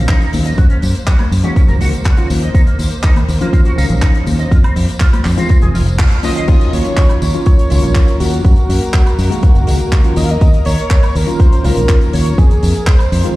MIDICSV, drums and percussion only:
0, 0, Header, 1, 2, 480
1, 0, Start_track
1, 0, Tempo, 491803
1, 565, Time_signature, 4, 2, 24, 8
1, 13041, End_track
2, 0, Start_track
2, 0, Title_t, "Drums"
2, 83, Note_on_c, 9, 39, 118
2, 85, Note_on_c, 9, 36, 101
2, 86, Note_on_c, 9, 42, 72
2, 181, Note_off_c, 9, 39, 0
2, 183, Note_off_c, 9, 36, 0
2, 184, Note_off_c, 9, 42, 0
2, 209, Note_on_c, 9, 42, 48
2, 214, Note_on_c, 9, 54, 22
2, 306, Note_off_c, 9, 42, 0
2, 312, Note_off_c, 9, 54, 0
2, 321, Note_on_c, 9, 46, 103
2, 332, Note_on_c, 9, 54, 70
2, 334, Note_on_c, 9, 63, 83
2, 419, Note_off_c, 9, 46, 0
2, 430, Note_off_c, 9, 54, 0
2, 431, Note_off_c, 9, 63, 0
2, 447, Note_on_c, 9, 42, 50
2, 453, Note_on_c, 9, 54, 32
2, 544, Note_off_c, 9, 42, 0
2, 550, Note_off_c, 9, 54, 0
2, 565, Note_on_c, 9, 42, 71
2, 566, Note_on_c, 9, 36, 112
2, 572, Note_on_c, 9, 54, 43
2, 662, Note_off_c, 9, 42, 0
2, 664, Note_off_c, 9, 36, 0
2, 670, Note_off_c, 9, 54, 0
2, 681, Note_on_c, 9, 42, 56
2, 693, Note_on_c, 9, 54, 22
2, 778, Note_off_c, 9, 42, 0
2, 791, Note_off_c, 9, 54, 0
2, 803, Note_on_c, 9, 46, 97
2, 810, Note_on_c, 9, 54, 78
2, 900, Note_off_c, 9, 46, 0
2, 908, Note_off_c, 9, 54, 0
2, 927, Note_on_c, 9, 42, 48
2, 927, Note_on_c, 9, 54, 29
2, 1024, Note_off_c, 9, 42, 0
2, 1024, Note_off_c, 9, 54, 0
2, 1041, Note_on_c, 9, 42, 76
2, 1045, Note_on_c, 9, 36, 95
2, 1047, Note_on_c, 9, 39, 107
2, 1049, Note_on_c, 9, 54, 43
2, 1139, Note_off_c, 9, 42, 0
2, 1143, Note_off_c, 9, 36, 0
2, 1144, Note_off_c, 9, 39, 0
2, 1146, Note_off_c, 9, 54, 0
2, 1159, Note_on_c, 9, 42, 50
2, 1160, Note_on_c, 9, 76, 59
2, 1169, Note_on_c, 9, 63, 75
2, 1177, Note_on_c, 9, 54, 20
2, 1257, Note_off_c, 9, 42, 0
2, 1258, Note_off_c, 9, 76, 0
2, 1267, Note_off_c, 9, 63, 0
2, 1274, Note_off_c, 9, 54, 0
2, 1290, Note_on_c, 9, 46, 99
2, 1292, Note_on_c, 9, 54, 74
2, 1388, Note_off_c, 9, 46, 0
2, 1390, Note_off_c, 9, 54, 0
2, 1400, Note_on_c, 9, 42, 54
2, 1406, Note_on_c, 9, 64, 83
2, 1408, Note_on_c, 9, 54, 31
2, 1497, Note_off_c, 9, 42, 0
2, 1504, Note_off_c, 9, 64, 0
2, 1506, Note_off_c, 9, 54, 0
2, 1525, Note_on_c, 9, 36, 111
2, 1525, Note_on_c, 9, 42, 76
2, 1534, Note_on_c, 9, 54, 44
2, 1622, Note_off_c, 9, 36, 0
2, 1623, Note_off_c, 9, 42, 0
2, 1631, Note_off_c, 9, 54, 0
2, 1644, Note_on_c, 9, 42, 51
2, 1646, Note_on_c, 9, 64, 72
2, 1654, Note_on_c, 9, 54, 22
2, 1742, Note_off_c, 9, 42, 0
2, 1744, Note_off_c, 9, 64, 0
2, 1751, Note_off_c, 9, 54, 0
2, 1763, Note_on_c, 9, 46, 108
2, 1773, Note_on_c, 9, 54, 78
2, 1861, Note_off_c, 9, 46, 0
2, 1870, Note_off_c, 9, 54, 0
2, 1885, Note_on_c, 9, 42, 57
2, 1892, Note_on_c, 9, 54, 36
2, 1982, Note_off_c, 9, 42, 0
2, 1989, Note_off_c, 9, 54, 0
2, 1995, Note_on_c, 9, 42, 73
2, 2005, Note_on_c, 9, 36, 104
2, 2005, Note_on_c, 9, 54, 43
2, 2011, Note_on_c, 9, 39, 105
2, 2093, Note_off_c, 9, 42, 0
2, 2102, Note_off_c, 9, 36, 0
2, 2103, Note_off_c, 9, 54, 0
2, 2108, Note_off_c, 9, 39, 0
2, 2118, Note_on_c, 9, 42, 48
2, 2124, Note_on_c, 9, 54, 21
2, 2216, Note_off_c, 9, 42, 0
2, 2222, Note_off_c, 9, 54, 0
2, 2246, Note_on_c, 9, 46, 105
2, 2247, Note_on_c, 9, 54, 81
2, 2251, Note_on_c, 9, 63, 78
2, 2343, Note_off_c, 9, 46, 0
2, 2345, Note_off_c, 9, 54, 0
2, 2349, Note_off_c, 9, 63, 0
2, 2366, Note_on_c, 9, 42, 48
2, 2463, Note_off_c, 9, 42, 0
2, 2485, Note_on_c, 9, 36, 110
2, 2486, Note_on_c, 9, 42, 68
2, 2490, Note_on_c, 9, 54, 45
2, 2582, Note_off_c, 9, 36, 0
2, 2583, Note_off_c, 9, 42, 0
2, 2588, Note_off_c, 9, 54, 0
2, 2603, Note_on_c, 9, 54, 25
2, 2605, Note_on_c, 9, 42, 53
2, 2701, Note_off_c, 9, 54, 0
2, 2703, Note_off_c, 9, 42, 0
2, 2723, Note_on_c, 9, 46, 112
2, 2727, Note_on_c, 9, 54, 86
2, 2820, Note_off_c, 9, 46, 0
2, 2825, Note_off_c, 9, 54, 0
2, 2836, Note_on_c, 9, 42, 52
2, 2849, Note_on_c, 9, 54, 35
2, 2934, Note_off_c, 9, 42, 0
2, 2946, Note_off_c, 9, 54, 0
2, 2960, Note_on_c, 9, 39, 109
2, 2960, Note_on_c, 9, 42, 76
2, 2965, Note_on_c, 9, 36, 98
2, 2967, Note_on_c, 9, 54, 45
2, 3058, Note_off_c, 9, 39, 0
2, 3058, Note_off_c, 9, 42, 0
2, 3063, Note_off_c, 9, 36, 0
2, 3065, Note_off_c, 9, 54, 0
2, 3085, Note_on_c, 9, 63, 83
2, 3086, Note_on_c, 9, 42, 52
2, 3091, Note_on_c, 9, 76, 59
2, 3093, Note_on_c, 9, 54, 23
2, 3183, Note_off_c, 9, 63, 0
2, 3184, Note_off_c, 9, 42, 0
2, 3189, Note_off_c, 9, 76, 0
2, 3191, Note_off_c, 9, 54, 0
2, 3206, Note_on_c, 9, 46, 96
2, 3213, Note_on_c, 9, 54, 79
2, 3303, Note_off_c, 9, 46, 0
2, 3311, Note_off_c, 9, 54, 0
2, 3328, Note_on_c, 9, 42, 49
2, 3329, Note_on_c, 9, 64, 81
2, 3332, Note_on_c, 9, 54, 35
2, 3426, Note_off_c, 9, 42, 0
2, 3427, Note_off_c, 9, 64, 0
2, 3429, Note_off_c, 9, 54, 0
2, 3446, Note_on_c, 9, 36, 106
2, 3449, Note_on_c, 9, 42, 77
2, 3451, Note_on_c, 9, 54, 46
2, 3543, Note_off_c, 9, 36, 0
2, 3547, Note_off_c, 9, 42, 0
2, 3549, Note_off_c, 9, 54, 0
2, 3564, Note_on_c, 9, 42, 59
2, 3572, Note_on_c, 9, 54, 23
2, 3662, Note_off_c, 9, 42, 0
2, 3670, Note_off_c, 9, 54, 0
2, 3692, Note_on_c, 9, 54, 80
2, 3693, Note_on_c, 9, 46, 100
2, 3790, Note_off_c, 9, 46, 0
2, 3790, Note_off_c, 9, 54, 0
2, 3803, Note_on_c, 9, 42, 59
2, 3808, Note_on_c, 9, 64, 74
2, 3815, Note_on_c, 9, 54, 36
2, 3901, Note_off_c, 9, 42, 0
2, 3905, Note_off_c, 9, 64, 0
2, 3913, Note_off_c, 9, 54, 0
2, 3923, Note_on_c, 9, 54, 44
2, 3924, Note_on_c, 9, 39, 109
2, 3926, Note_on_c, 9, 36, 97
2, 3926, Note_on_c, 9, 42, 72
2, 4021, Note_off_c, 9, 54, 0
2, 4022, Note_off_c, 9, 39, 0
2, 4023, Note_off_c, 9, 42, 0
2, 4024, Note_off_c, 9, 36, 0
2, 4047, Note_on_c, 9, 42, 55
2, 4053, Note_on_c, 9, 54, 22
2, 4144, Note_off_c, 9, 42, 0
2, 4150, Note_off_c, 9, 54, 0
2, 4162, Note_on_c, 9, 63, 86
2, 4166, Note_on_c, 9, 46, 98
2, 4169, Note_on_c, 9, 54, 85
2, 4260, Note_off_c, 9, 63, 0
2, 4263, Note_off_c, 9, 46, 0
2, 4266, Note_off_c, 9, 54, 0
2, 4288, Note_on_c, 9, 42, 58
2, 4292, Note_on_c, 9, 54, 32
2, 4385, Note_off_c, 9, 42, 0
2, 4389, Note_off_c, 9, 54, 0
2, 4406, Note_on_c, 9, 36, 117
2, 4410, Note_on_c, 9, 42, 82
2, 4412, Note_on_c, 9, 54, 44
2, 4504, Note_off_c, 9, 36, 0
2, 4508, Note_off_c, 9, 42, 0
2, 4510, Note_off_c, 9, 54, 0
2, 4528, Note_on_c, 9, 42, 57
2, 4532, Note_on_c, 9, 76, 82
2, 4534, Note_on_c, 9, 54, 22
2, 4626, Note_off_c, 9, 42, 0
2, 4629, Note_off_c, 9, 76, 0
2, 4632, Note_off_c, 9, 54, 0
2, 4646, Note_on_c, 9, 46, 115
2, 4654, Note_on_c, 9, 54, 74
2, 4744, Note_off_c, 9, 46, 0
2, 4751, Note_off_c, 9, 54, 0
2, 4769, Note_on_c, 9, 54, 34
2, 4771, Note_on_c, 9, 42, 54
2, 4866, Note_off_c, 9, 54, 0
2, 4868, Note_off_c, 9, 42, 0
2, 4880, Note_on_c, 9, 39, 117
2, 4885, Note_on_c, 9, 42, 82
2, 4887, Note_on_c, 9, 36, 99
2, 4894, Note_on_c, 9, 54, 45
2, 4978, Note_off_c, 9, 39, 0
2, 4983, Note_off_c, 9, 42, 0
2, 4985, Note_off_c, 9, 36, 0
2, 4992, Note_off_c, 9, 54, 0
2, 5007, Note_on_c, 9, 76, 63
2, 5009, Note_on_c, 9, 54, 22
2, 5010, Note_on_c, 9, 63, 73
2, 5011, Note_on_c, 9, 42, 62
2, 5105, Note_off_c, 9, 76, 0
2, 5107, Note_off_c, 9, 54, 0
2, 5108, Note_off_c, 9, 42, 0
2, 5108, Note_off_c, 9, 63, 0
2, 5120, Note_on_c, 9, 39, 59
2, 5124, Note_on_c, 9, 46, 88
2, 5132, Note_on_c, 9, 54, 79
2, 5218, Note_off_c, 9, 39, 0
2, 5221, Note_off_c, 9, 46, 0
2, 5230, Note_off_c, 9, 54, 0
2, 5250, Note_on_c, 9, 42, 59
2, 5251, Note_on_c, 9, 64, 84
2, 5254, Note_on_c, 9, 54, 36
2, 5347, Note_off_c, 9, 42, 0
2, 5349, Note_off_c, 9, 64, 0
2, 5351, Note_off_c, 9, 54, 0
2, 5359, Note_on_c, 9, 42, 71
2, 5367, Note_on_c, 9, 36, 107
2, 5375, Note_on_c, 9, 54, 44
2, 5457, Note_off_c, 9, 42, 0
2, 5465, Note_off_c, 9, 36, 0
2, 5472, Note_off_c, 9, 54, 0
2, 5482, Note_on_c, 9, 42, 57
2, 5485, Note_on_c, 9, 64, 81
2, 5498, Note_on_c, 9, 54, 22
2, 5580, Note_off_c, 9, 42, 0
2, 5583, Note_off_c, 9, 64, 0
2, 5595, Note_off_c, 9, 54, 0
2, 5612, Note_on_c, 9, 54, 76
2, 5615, Note_on_c, 9, 46, 106
2, 5710, Note_off_c, 9, 54, 0
2, 5712, Note_off_c, 9, 46, 0
2, 5726, Note_on_c, 9, 42, 58
2, 5743, Note_on_c, 9, 54, 36
2, 5824, Note_off_c, 9, 42, 0
2, 5841, Note_off_c, 9, 54, 0
2, 5846, Note_on_c, 9, 42, 81
2, 5847, Note_on_c, 9, 36, 101
2, 5847, Note_on_c, 9, 39, 126
2, 5849, Note_on_c, 9, 54, 46
2, 5944, Note_off_c, 9, 42, 0
2, 5945, Note_off_c, 9, 36, 0
2, 5945, Note_off_c, 9, 39, 0
2, 5947, Note_off_c, 9, 54, 0
2, 5966, Note_on_c, 9, 42, 57
2, 5975, Note_on_c, 9, 54, 23
2, 6063, Note_off_c, 9, 42, 0
2, 6072, Note_off_c, 9, 54, 0
2, 6080, Note_on_c, 9, 46, 112
2, 6081, Note_on_c, 9, 63, 90
2, 6089, Note_on_c, 9, 54, 79
2, 6177, Note_off_c, 9, 46, 0
2, 6178, Note_off_c, 9, 63, 0
2, 6187, Note_off_c, 9, 54, 0
2, 6210, Note_on_c, 9, 42, 54
2, 6211, Note_on_c, 9, 54, 32
2, 6307, Note_off_c, 9, 42, 0
2, 6309, Note_off_c, 9, 54, 0
2, 6323, Note_on_c, 9, 42, 73
2, 6323, Note_on_c, 9, 49, 105
2, 6327, Note_on_c, 9, 36, 123
2, 6333, Note_on_c, 9, 54, 40
2, 6421, Note_off_c, 9, 42, 0
2, 6421, Note_off_c, 9, 49, 0
2, 6425, Note_off_c, 9, 36, 0
2, 6431, Note_off_c, 9, 54, 0
2, 6452, Note_on_c, 9, 42, 55
2, 6452, Note_on_c, 9, 54, 34
2, 6549, Note_off_c, 9, 54, 0
2, 6550, Note_off_c, 9, 42, 0
2, 6570, Note_on_c, 9, 54, 74
2, 6571, Note_on_c, 9, 46, 111
2, 6667, Note_off_c, 9, 54, 0
2, 6668, Note_off_c, 9, 46, 0
2, 6680, Note_on_c, 9, 42, 54
2, 6688, Note_on_c, 9, 54, 33
2, 6778, Note_off_c, 9, 42, 0
2, 6785, Note_off_c, 9, 54, 0
2, 6802, Note_on_c, 9, 42, 88
2, 6804, Note_on_c, 9, 39, 117
2, 6806, Note_on_c, 9, 36, 104
2, 6807, Note_on_c, 9, 54, 43
2, 6899, Note_off_c, 9, 42, 0
2, 6901, Note_off_c, 9, 39, 0
2, 6904, Note_off_c, 9, 36, 0
2, 6905, Note_off_c, 9, 54, 0
2, 6922, Note_on_c, 9, 76, 58
2, 6925, Note_on_c, 9, 54, 29
2, 6926, Note_on_c, 9, 42, 60
2, 7020, Note_off_c, 9, 76, 0
2, 7022, Note_off_c, 9, 54, 0
2, 7023, Note_off_c, 9, 42, 0
2, 7044, Note_on_c, 9, 54, 83
2, 7047, Note_on_c, 9, 46, 101
2, 7142, Note_off_c, 9, 54, 0
2, 7144, Note_off_c, 9, 46, 0
2, 7161, Note_on_c, 9, 42, 57
2, 7168, Note_on_c, 9, 54, 30
2, 7258, Note_off_c, 9, 42, 0
2, 7265, Note_off_c, 9, 54, 0
2, 7279, Note_on_c, 9, 54, 49
2, 7282, Note_on_c, 9, 42, 75
2, 7285, Note_on_c, 9, 36, 121
2, 7377, Note_off_c, 9, 54, 0
2, 7380, Note_off_c, 9, 42, 0
2, 7382, Note_off_c, 9, 36, 0
2, 7407, Note_on_c, 9, 42, 62
2, 7411, Note_on_c, 9, 54, 30
2, 7504, Note_off_c, 9, 42, 0
2, 7509, Note_off_c, 9, 54, 0
2, 7516, Note_on_c, 9, 46, 113
2, 7531, Note_on_c, 9, 54, 83
2, 7613, Note_off_c, 9, 46, 0
2, 7629, Note_off_c, 9, 54, 0
2, 7640, Note_on_c, 9, 42, 58
2, 7652, Note_on_c, 9, 54, 37
2, 7737, Note_off_c, 9, 42, 0
2, 7749, Note_off_c, 9, 54, 0
2, 7756, Note_on_c, 9, 42, 76
2, 7761, Note_on_c, 9, 39, 127
2, 7764, Note_on_c, 9, 36, 103
2, 7778, Note_on_c, 9, 54, 45
2, 7854, Note_off_c, 9, 42, 0
2, 7858, Note_off_c, 9, 39, 0
2, 7862, Note_off_c, 9, 36, 0
2, 7876, Note_off_c, 9, 54, 0
2, 7884, Note_on_c, 9, 54, 33
2, 7886, Note_on_c, 9, 42, 59
2, 7981, Note_off_c, 9, 54, 0
2, 7983, Note_off_c, 9, 42, 0
2, 8005, Note_on_c, 9, 46, 115
2, 8013, Note_on_c, 9, 54, 77
2, 8103, Note_off_c, 9, 46, 0
2, 8111, Note_off_c, 9, 54, 0
2, 8126, Note_on_c, 9, 42, 53
2, 8131, Note_on_c, 9, 54, 35
2, 8224, Note_off_c, 9, 42, 0
2, 8229, Note_off_c, 9, 54, 0
2, 8243, Note_on_c, 9, 42, 73
2, 8244, Note_on_c, 9, 36, 126
2, 8257, Note_on_c, 9, 54, 44
2, 8340, Note_off_c, 9, 42, 0
2, 8341, Note_off_c, 9, 36, 0
2, 8354, Note_off_c, 9, 54, 0
2, 8356, Note_on_c, 9, 42, 52
2, 8366, Note_on_c, 9, 54, 29
2, 8453, Note_off_c, 9, 42, 0
2, 8463, Note_off_c, 9, 54, 0
2, 8489, Note_on_c, 9, 46, 117
2, 8499, Note_on_c, 9, 54, 72
2, 8586, Note_off_c, 9, 46, 0
2, 8596, Note_off_c, 9, 54, 0
2, 8608, Note_on_c, 9, 42, 52
2, 8612, Note_on_c, 9, 54, 30
2, 8706, Note_off_c, 9, 42, 0
2, 8710, Note_off_c, 9, 54, 0
2, 8718, Note_on_c, 9, 42, 75
2, 8721, Note_on_c, 9, 39, 112
2, 8724, Note_on_c, 9, 36, 108
2, 8728, Note_on_c, 9, 54, 43
2, 8815, Note_off_c, 9, 42, 0
2, 8818, Note_off_c, 9, 39, 0
2, 8821, Note_off_c, 9, 36, 0
2, 8826, Note_off_c, 9, 54, 0
2, 8847, Note_on_c, 9, 76, 59
2, 8849, Note_on_c, 9, 42, 60
2, 8852, Note_on_c, 9, 54, 32
2, 8945, Note_off_c, 9, 76, 0
2, 8946, Note_off_c, 9, 42, 0
2, 8950, Note_off_c, 9, 54, 0
2, 8966, Note_on_c, 9, 54, 71
2, 8971, Note_on_c, 9, 46, 104
2, 9064, Note_off_c, 9, 54, 0
2, 9068, Note_off_c, 9, 46, 0
2, 9087, Note_on_c, 9, 54, 33
2, 9097, Note_on_c, 9, 42, 58
2, 9184, Note_off_c, 9, 54, 0
2, 9194, Note_off_c, 9, 42, 0
2, 9202, Note_on_c, 9, 42, 76
2, 9204, Note_on_c, 9, 36, 120
2, 9217, Note_on_c, 9, 54, 40
2, 9299, Note_off_c, 9, 42, 0
2, 9301, Note_off_c, 9, 36, 0
2, 9315, Note_off_c, 9, 54, 0
2, 9322, Note_on_c, 9, 42, 57
2, 9328, Note_on_c, 9, 54, 30
2, 9420, Note_off_c, 9, 42, 0
2, 9426, Note_off_c, 9, 54, 0
2, 9438, Note_on_c, 9, 46, 106
2, 9453, Note_on_c, 9, 54, 75
2, 9536, Note_off_c, 9, 46, 0
2, 9550, Note_off_c, 9, 54, 0
2, 9554, Note_on_c, 9, 42, 56
2, 9570, Note_on_c, 9, 54, 35
2, 9652, Note_off_c, 9, 42, 0
2, 9668, Note_off_c, 9, 54, 0
2, 9684, Note_on_c, 9, 36, 107
2, 9684, Note_on_c, 9, 42, 76
2, 9687, Note_on_c, 9, 39, 127
2, 9687, Note_on_c, 9, 54, 42
2, 9781, Note_off_c, 9, 36, 0
2, 9782, Note_off_c, 9, 42, 0
2, 9784, Note_off_c, 9, 39, 0
2, 9785, Note_off_c, 9, 54, 0
2, 9801, Note_on_c, 9, 42, 51
2, 9813, Note_on_c, 9, 54, 30
2, 9899, Note_off_c, 9, 42, 0
2, 9911, Note_off_c, 9, 54, 0
2, 9918, Note_on_c, 9, 46, 109
2, 9928, Note_on_c, 9, 54, 74
2, 10016, Note_off_c, 9, 46, 0
2, 10026, Note_off_c, 9, 54, 0
2, 10041, Note_on_c, 9, 42, 58
2, 10050, Note_on_c, 9, 54, 30
2, 10138, Note_off_c, 9, 42, 0
2, 10148, Note_off_c, 9, 54, 0
2, 10162, Note_on_c, 9, 42, 76
2, 10164, Note_on_c, 9, 36, 127
2, 10169, Note_on_c, 9, 54, 42
2, 10259, Note_off_c, 9, 42, 0
2, 10261, Note_off_c, 9, 36, 0
2, 10266, Note_off_c, 9, 54, 0
2, 10284, Note_on_c, 9, 42, 59
2, 10286, Note_on_c, 9, 54, 28
2, 10382, Note_off_c, 9, 42, 0
2, 10383, Note_off_c, 9, 54, 0
2, 10394, Note_on_c, 9, 46, 111
2, 10413, Note_on_c, 9, 54, 73
2, 10492, Note_off_c, 9, 46, 0
2, 10511, Note_off_c, 9, 54, 0
2, 10530, Note_on_c, 9, 42, 58
2, 10531, Note_on_c, 9, 54, 34
2, 10627, Note_off_c, 9, 42, 0
2, 10628, Note_off_c, 9, 54, 0
2, 10644, Note_on_c, 9, 36, 108
2, 10644, Note_on_c, 9, 39, 118
2, 10644, Note_on_c, 9, 42, 80
2, 10649, Note_on_c, 9, 54, 40
2, 10741, Note_off_c, 9, 39, 0
2, 10741, Note_off_c, 9, 42, 0
2, 10742, Note_off_c, 9, 36, 0
2, 10747, Note_off_c, 9, 54, 0
2, 10764, Note_on_c, 9, 42, 58
2, 10768, Note_on_c, 9, 76, 69
2, 10773, Note_on_c, 9, 54, 29
2, 10862, Note_off_c, 9, 42, 0
2, 10865, Note_off_c, 9, 76, 0
2, 10870, Note_off_c, 9, 54, 0
2, 10885, Note_on_c, 9, 46, 106
2, 10895, Note_on_c, 9, 54, 67
2, 10983, Note_off_c, 9, 46, 0
2, 10993, Note_off_c, 9, 54, 0
2, 11004, Note_on_c, 9, 42, 54
2, 11011, Note_on_c, 9, 54, 33
2, 11102, Note_off_c, 9, 42, 0
2, 11108, Note_off_c, 9, 54, 0
2, 11123, Note_on_c, 9, 42, 73
2, 11124, Note_on_c, 9, 36, 124
2, 11143, Note_on_c, 9, 54, 46
2, 11220, Note_off_c, 9, 42, 0
2, 11221, Note_off_c, 9, 36, 0
2, 11241, Note_off_c, 9, 54, 0
2, 11247, Note_on_c, 9, 42, 60
2, 11252, Note_on_c, 9, 54, 30
2, 11344, Note_off_c, 9, 42, 0
2, 11350, Note_off_c, 9, 54, 0
2, 11365, Note_on_c, 9, 46, 126
2, 11375, Note_on_c, 9, 54, 69
2, 11463, Note_off_c, 9, 46, 0
2, 11473, Note_off_c, 9, 54, 0
2, 11486, Note_on_c, 9, 42, 61
2, 11491, Note_on_c, 9, 54, 35
2, 11583, Note_off_c, 9, 42, 0
2, 11588, Note_off_c, 9, 54, 0
2, 11604, Note_on_c, 9, 36, 118
2, 11604, Note_on_c, 9, 39, 117
2, 11606, Note_on_c, 9, 42, 82
2, 11610, Note_on_c, 9, 54, 43
2, 11702, Note_off_c, 9, 36, 0
2, 11702, Note_off_c, 9, 39, 0
2, 11704, Note_off_c, 9, 42, 0
2, 11707, Note_off_c, 9, 54, 0
2, 11725, Note_on_c, 9, 42, 52
2, 11735, Note_on_c, 9, 54, 30
2, 11823, Note_off_c, 9, 42, 0
2, 11833, Note_off_c, 9, 54, 0
2, 11842, Note_on_c, 9, 46, 106
2, 11861, Note_on_c, 9, 54, 76
2, 11939, Note_off_c, 9, 46, 0
2, 11959, Note_off_c, 9, 54, 0
2, 11965, Note_on_c, 9, 42, 55
2, 11977, Note_on_c, 9, 54, 30
2, 12063, Note_off_c, 9, 42, 0
2, 12075, Note_off_c, 9, 54, 0
2, 12084, Note_on_c, 9, 36, 127
2, 12087, Note_on_c, 9, 54, 46
2, 12090, Note_on_c, 9, 42, 77
2, 12182, Note_off_c, 9, 36, 0
2, 12185, Note_off_c, 9, 54, 0
2, 12188, Note_off_c, 9, 42, 0
2, 12207, Note_on_c, 9, 42, 59
2, 12212, Note_on_c, 9, 54, 31
2, 12305, Note_off_c, 9, 42, 0
2, 12310, Note_off_c, 9, 54, 0
2, 12324, Note_on_c, 9, 46, 115
2, 12334, Note_on_c, 9, 54, 71
2, 12421, Note_off_c, 9, 46, 0
2, 12432, Note_off_c, 9, 54, 0
2, 12441, Note_on_c, 9, 42, 53
2, 12448, Note_on_c, 9, 54, 31
2, 12538, Note_off_c, 9, 42, 0
2, 12546, Note_off_c, 9, 54, 0
2, 12560, Note_on_c, 9, 39, 115
2, 12564, Note_on_c, 9, 36, 109
2, 12567, Note_on_c, 9, 42, 75
2, 12573, Note_on_c, 9, 54, 41
2, 12658, Note_off_c, 9, 39, 0
2, 12662, Note_off_c, 9, 36, 0
2, 12665, Note_off_c, 9, 42, 0
2, 12671, Note_off_c, 9, 54, 0
2, 12679, Note_on_c, 9, 76, 69
2, 12689, Note_on_c, 9, 42, 51
2, 12693, Note_on_c, 9, 54, 27
2, 12777, Note_off_c, 9, 76, 0
2, 12787, Note_off_c, 9, 42, 0
2, 12791, Note_off_c, 9, 54, 0
2, 12808, Note_on_c, 9, 46, 112
2, 12811, Note_on_c, 9, 54, 73
2, 12905, Note_off_c, 9, 46, 0
2, 12909, Note_off_c, 9, 54, 0
2, 12924, Note_on_c, 9, 42, 52
2, 12932, Note_on_c, 9, 54, 31
2, 13021, Note_off_c, 9, 42, 0
2, 13030, Note_off_c, 9, 54, 0
2, 13041, End_track
0, 0, End_of_file